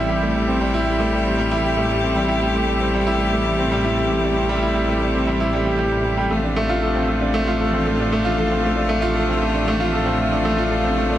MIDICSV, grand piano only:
0, 0, Header, 1, 2, 480
1, 0, Start_track
1, 0, Key_signature, 0, "minor"
1, 0, Tempo, 517241
1, 90, Time_signature, 4, 2, 24, 8
1, 10377, End_track
2, 0, Start_track
2, 0, Title_t, "Grand piano"
2, 0, Program_c, 0, 0
2, 0, Control_c, 0, 64, 127
2, 0, Note_on_c, 0, 55, 101
2, 0, Note_on_c, 0, 57, 73
2, 0, Note_on_c, 0, 60, 74
2, 0, Note_on_c, 0, 64, 95
2, 0, Note_on_c, 0, 67, 78
2, 86, Note_off_c, 0, 67, 0
2, 86, Note_on_c, 0, 67, 79
2, 202, Note_off_c, 0, 67, 0
2, 208, Note_off_c, 0, 57, 0
2, 208, Note_on_c, 0, 57, 76
2, 323, Note_off_c, 0, 57, 0
2, 325, Note_off_c, 0, 55, 0
2, 325, Note_on_c, 0, 55, 81
2, 442, Note_off_c, 0, 55, 0
2, 447, Note_off_c, 0, 60, 0
2, 447, Note_on_c, 0, 60, 74
2, 563, Note_off_c, 0, 60, 0
2, 565, Note_on_c, 0, 55, 104
2, 636, Note_off_c, 0, 55, 0
2, 688, Note_off_c, 0, 64, 0
2, 688, Note_on_c, 0, 64, 107
2, 803, Note_off_c, 0, 64, 0
2, 808, Note_on_c, 0, 67, 79
2, 923, Note_off_c, 0, 67, 0
2, 926, Note_on_c, 0, 57, 83
2, 1042, Note_off_c, 0, 57, 0
2, 1047, Note_on_c, 0, 55, 83
2, 1163, Note_off_c, 0, 55, 0
2, 1169, Note_on_c, 0, 60, 76
2, 1283, Note_off_c, 0, 60, 0
2, 1287, Note_on_c, 0, 55, 105
2, 1357, Note_off_c, 0, 55, 0
2, 1405, Note_on_c, 0, 64, 108
2, 1522, Note_off_c, 0, 64, 0
2, 1525, Note_on_c, 0, 67, 84
2, 1640, Note_on_c, 0, 57, 81
2, 1642, Note_off_c, 0, 67, 0
2, 1759, Note_off_c, 0, 57, 0
2, 1762, Note_on_c, 0, 55, 76
2, 1880, Note_off_c, 0, 55, 0
2, 1885, Note_on_c, 0, 60, 77
2, 2001, Note_off_c, 0, 60, 0
2, 2002, Note_on_c, 0, 55, 100
2, 2075, Note_off_c, 0, 55, 0
2, 2120, Note_on_c, 0, 64, 100
2, 2239, Note_off_c, 0, 64, 0
2, 2244, Note_on_c, 0, 67, 88
2, 2361, Note_off_c, 0, 67, 0
2, 2367, Note_on_c, 0, 57, 70
2, 2483, Note_off_c, 0, 57, 0
2, 2486, Note_on_c, 0, 55, 81
2, 2602, Note_off_c, 0, 55, 0
2, 2606, Note_on_c, 0, 60, 76
2, 2722, Note_off_c, 0, 60, 0
2, 2727, Note_on_c, 0, 55, 100
2, 2797, Note_off_c, 0, 55, 0
2, 2846, Note_on_c, 0, 64, 108
2, 2962, Note_off_c, 0, 64, 0
2, 2966, Note_on_c, 0, 67, 87
2, 3082, Note_off_c, 0, 67, 0
2, 3089, Note_on_c, 0, 57, 74
2, 3203, Note_off_c, 0, 57, 0
2, 3207, Note_on_c, 0, 55, 76
2, 3323, Note_off_c, 0, 55, 0
2, 3329, Note_on_c, 0, 60, 81
2, 3444, Note_off_c, 0, 60, 0
2, 3448, Note_on_c, 0, 55, 104
2, 3518, Note_off_c, 0, 55, 0
2, 3568, Note_on_c, 0, 64, 97
2, 3683, Note_off_c, 0, 64, 0
2, 3689, Note_on_c, 0, 67, 73
2, 3804, Note_off_c, 0, 67, 0
2, 3811, Note_on_c, 0, 57, 73
2, 3925, Note_off_c, 0, 57, 0
2, 3931, Note_on_c, 0, 55, 85
2, 4045, Note_off_c, 0, 55, 0
2, 4051, Note_on_c, 0, 60, 72
2, 4165, Note_off_c, 0, 60, 0
2, 4169, Note_on_c, 0, 55, 109
2, 4238, Note_off_c, 0, 55, 0
2, 4293, Note_on_c, 0, 64, 96
2, 4405, Note_off_c, 0, 64, 0
2, 4413, Note_on_c, 0, 67, 78
2, 4526, Note_off_c, 0, 67, 0
2, 4533, Note_on_c, 0, 57, 79
2, 4645, Note_off_c, 0, 57, 0
2, 4656, Note_on_c, 0, 55, 72
2, 4767, Note_off_c, 0, 55, 0
2, 4774, Note_on_c, 0, 60, 75
2, 4886, Note_off_c, 0, 60, 0
2, 4893, Note_on_c, 0, 55, 98
2, 4960, Note_off_c, 0, 55, 0
2, 5013, Note_on_c, 0, 64, 97
2, 5126, Note_off_c, 0, 64, 0
2, 5131, Note_on_c, 0, 55, 109
2, 5199, Note_off_c, 0, 55, 0
2, 5251, Note_on_c, 0, 67, 71
2, 5355, Note_off_c, 0, 67, 0
2, 5369, Note_on_c, 0, 67, 85
2, 5438, Note_off_c, 0, 67, 0
2, 5490, Note_on_c, 0, 55, 72
2, 5598, Note_off_c, 0, 55, 0
2, 5612, Note_on_c, 0, 55, 70
2, 5715, Note_off_c, 0, 55, 0
2, 5729, Note_on_c, 0, 55, 98
2, 5843, Note_off_c, 0, 55, 0
2, 5851, Note_on_c, 0, 57, 81
2, 5862, Control_c, 0, 64, 0
2, 5964, Note_off_c, 0, 57, 0
2, 5972, Note_on_c, 0, 62, 68
2, 6015, Control_c, 0, 64, 127
2, 6085, Note_off_c, 0, 62, 0
2, 6091, Note_on_c, 0, 57, 105
2, 6159, Note_off_c, 0, 57, 0
2, 6211, Note_on_c, 0, 65, 101
2, 6325, Note_off_c, 0, 65, 0
2, 6333, Note_on_c, 0, 69, 75
2, 6445, Note_off_c, 0, 69, 0
2, 6451, Note_on_c, 0, 60, 80
2, 6565, Note_off_c, 0, 60, 0
2, 6572, Note_on_c, 0, 57, 71
2, 6685, Note_off_c, 0, 57, 0
2, 6691, Note_on_c, 0, 62, 75
2, 6805, Note_off_c, 0, 62, 0
2, 6810, Note_on_c, 0, 57, 106
2, 6878, Note_off_c, 0, 57, 0
2, 6937, Note_on_c, 0, 65, 98
2, 7048, Note_off_c, 0, 65, 0
2, 7058, Note_on_c, 0, 69, 75
2, 7168, Note_off_c, 0, 69, 0
2, 7174, Note_on_c, 0, 60, 81
2, 7286, Note_off_c, 0, 60, 0
2, 7297, Note_on_c, 0, 57, 80
2, 7408, Note_off_c, 0, 57, 0
2, 7419, Note_on_c, 0, 62, 76
2, 7529, Note_off_c, 0, 62, 0
2, 7538, Note_on_c, 0, 57, 101
2, 7603, Note_off_c, 0, 57, 0
2, 7653, Note_on_c, 0, 65, 99
2, 7766, Note_off_c, 0, 65, 0
2, 7775, Note_on_c, 0, 69, 85
2, 7887, Note_off_c, 0, 69, 0
2, 7895, Note_on_c, 0, 60, 71
2, 8007, Note_off_c, 0, 60, 0
2, 8013, Note_on_c, 0, 57, 84
2, 8126, Note_off_c, 0, 57, 0
2, 8131, Note_on_c, 0, 62, 71
2, 8245, Note_off_c, 0, 62, 0
2, 8249, Note_on_c, 0, 57, 100
2, 8318, Note_off_c, 0, 57, 0
2, 8371, Note_on_c, 0, 65, 112
2, 8484, Note_off_c, 0, 65, 0
2, 8494, Note_on_c, 0, 69, 74
2, 8606, Note_off_c, 0, 69, 0
2, 8614, Note_on_c, 0, 60, 78
2, 8726, Note_off_c, 0, 60, 0
2, 8738, Note_on_c, 0, 57, 90
2, 8848, Note_off_c, 0, 57, 0
2, 8859, Note_on_c, 0, 62, 75
2, 8969, Note_off_c, 0, 62, 0
2, 8980, Note_on_c, 0, 57, 105
2, 9044, Note_off_c, 0, 57, 0
2, 9094, Note_on_c, 0, 65, 105
2, 9206, Note_off_c, 0, 65, 0
2, 9214, Note_on_c, 0, 69, 84
2, 9326, Note_off_c, 0, 69, 0
2, 9332, Note_on_c, 0, 60, 82
2, 9445, Note_off_c, 0, 60, 0
2, 9457, Note_on_c, 0, 57, 76
2, 9567, Note_off_c, 0, 57, 0
2, 9576, Note_on_c, 0, 62, 75
2, 9687, Note_off_c, 0, 62, 0
2, 9697, Note_on_c, 0, 57, 104
2, 9762, Note_off_c, 0, 57, 0
2, 9819, Note_on_c, 0, 65, 100
2, 9929, Note_off_c, 0, 65, 0
2, 9939, Note_on_c, 0, 69, 82
2, 10048, Note_off_c, 0, 69, 0
2, 10057, Note_on_c, 0, 60, 78
2, 10168, Note_off_c, 0, 60, 0
2, 10175, Note_on_c, 0, 57, 84
2, 10287, Note_off_c, 0, 57, 0
2, 10297, Note_on_c, 0, 62, 77
2, 10377, Note_off_c, 0, 62, 0
2, 10377, End_track
0, 0, End_of_file